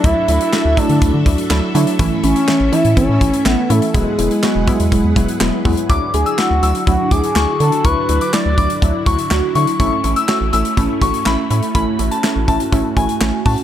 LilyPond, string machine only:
\new Staff \with { instrumentName = "String machine" } { \time 4/4 \key d \lydian \tempo 4 = 123 << { <a' e''>1~ | <a' e''>1 | <b' fis''>1 | <e' fis'>1~ |
<e' fis'>1 | cis'1 | fis'1 | } \\ { <d' fis'>1 | <cis' e'>1 | <e' gis'>1 | <d d'>1~ |
<d d'>1 | a1~ | a1 | } >> }